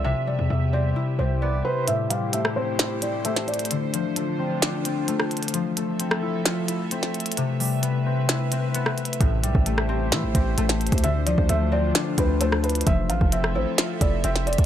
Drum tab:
HH |------------------------------------------------------------------------------------------------|x-----------x-----------x-----------------------x-----------x-----------x-----------x--x--x--x--|x-----------x-----------x-----------------------x-----------x-----------x-----------x--x--x--x--|x-----------x-----------x-----------------------x-----------x-----------x-----------x--x--x--x--|
SD |------------------------------------------------------------------------------------------------|------------------------------r-----------------o-----------------------------o-----------------|------------------------------------------------o-----------------------------r-----------------|------------------------------r-----------------o-----------------------------o-----------------|
BD |------------------------------------------------------------------------------------------------|------------------------------------------------------------------------------------------------|------------------------------------------------------------------------------------------------|------------------------------------------------------------------------------------------------|

HH |x-----------o-----------x-----------------------x-----------x-----------x-----------x---x---x---|x-----------x-----------x-----------------------x-----------x-----------x-----------x--x--x--x--|x-----------x-----------x-----------------------x-----------x-----------x-----------x--x--x--x--|x-----------x-----------x-----------------------x-----------x-----------x-----------x--x--x-----|
SD |------------------------------------------------o-----------------------------r-----------------|------------------------------r-----------------o-----------------------------o-----------------|------------------------------------------------o-----------------------------r-----------------|------------------------------r-----------------o-----------------------------o-----------------|
BD |------------------------------------------------------------------------------------------------|o-----------------o-----------------------------------------o-----------------------------o-----|------------------o-----------------------------------------o-----------------------------------|o-----------------o-----------------------------------------o-----------------------------o-----|